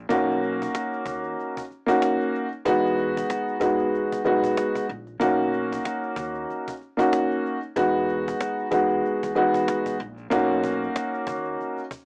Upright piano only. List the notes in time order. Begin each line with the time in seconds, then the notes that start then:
0.09 A#3 C#4 D#4 F#4
1.86 A#3 C#4 D#4 F#4
2.65 G#3 B3 D#4 F#4
3.60 G#3 B3 D#4 F#4
4.25 G#3 B3 D#4 F#4
5.20 A#3 C#4 D#4 F#4
6.97 A#3 C#4 D#4 F#4
7.76 G#3 B3 D#4 F#4
8.71 G#3 B3 D#4 F#4
9.35 G#3 B3 D#4 F#4
10.30 A#3 C#4 D#4 F#4